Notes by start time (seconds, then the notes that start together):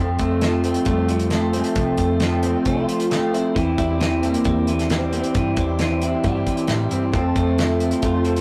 Already playing: F2 C3 F3 A3 C4 A4 F5 C6
0.00 F4
0.19 F2 A3 C4, kick, closed hi-hat
0.30 F3 A3 C4 F4
0.41 F2 C3 F3 A3 C4 F4, snare, closed hi-hat
0.64 F3 A3 C4 F4, closed hi-hat
0.74 F3 A3 C4 F4, closed hi-hat
0.85 F2 G3 A3, kick, closed hi-hat
0.97 F3 A3 C4 F4
1.09 F3 G3, closed hi-hat
1.19 closed hi-hat
1.30 F2 C3 F3 A3 C4 F4, snare, closed hi-hat
1.53 F3 A3 C4 F4, closed hi-hat
1.64 F3 A3 C4 F4, closed hi-hat
1.75 C2 F2 C3 F3 A3 C4 F4 G5, kick, closed hi-hat
1.97 F2 A3, kick, closed hi-hat
2.10 F3 A3 C4 F4
2.20 F2 C3 F3 A3 C4 F4, snare, closed hi-hat
2.43 F3 A3 C4 F4, closed hi-hat
2.54 F3 A3 C4 F4
2.65 C2 A3 F4, kick, closed hi-hat
2.77 F3 A3 C4 F4
2.88 F3, closed hi-hat
2.99 F3 A3 C4 F4, closed hi-hat
3.10 F2 C3 F3 A3 C4 F4, snare, closed hi-hat
3.33 F3 A3 C4 E4 F4, closed hi-hat
3.44 F3 A3 C4 F4
3.56 E2 E3 C4 E4 G4 E5, kick, closed hi-hat
3.78 E2 G3 E4, kick, closed hi-hat
3.89 C4 E4 G4
4.00 E3 C4 E4 G4, snare, closed hi-hat
4.23 E3 A#3 C4 E4 G4, closed hi-hat
4.34 C4 E4 G4, closed hi-hat
4.44 E2 G3, kick, closed hi-hat
4.56 C4 E4 G4
4.67 E3, closed hi-hat
4.72 A3
4.79 snare, closed hi-hat
4.89 E3 G3 C4 E4 G4, snare, closed hi-hat
5.11 E3 C4 E4 G4, closed hi-hat
5.22 C4 E4 G4, closed hi-hat
5.33 G2 E3 C4 E4 G4, kick, closed hi-hat
5.56 E2 G3, kick, closed hi-hat
5.67 C4 E4 G4
5.78 E3 C4 E4 G4, snare, closed hi-hat
6.00 E3 C4 E4 G4, closed hi-hat
6.12 C4 E4 G4
6.24 G2 G3 G4, kick, closed hi-hat
6.35 C4 E4 G4
6.47 E3, kick, closed hi-hat
6.57 C4 E4 G4, closed hi-hat
6.67 A2 E3 G3 C4 E4 G4, snare, closed hi-hat
6.89 G2 E3 C4 E4 G4, closed hi-hat
7.01 C4 E4 G4
7.12 F2 C3 F3 A3 C4 F4 A4 C5 A5, kick, closed hi-hat
7.36 F2 A3, kick, closed hi-hat
7.47 F3 A3 C4 F4
7.58 F2 C3 F3 A3 C4 E4 F4, snare, closed hi-hat
7.79 F3 A3 C4 F4, closed hi-hat
7.91 F3 A3 C4 F4, closed hi-hat
8.02 F2 A3 F4, kick, closed hi-hat
8.13 F3 A3 C4 F4
8.25 F3 F4 A4 C5, closed hi-hat
8.35 F3 A3 C4 F4, snare, closed hi-hat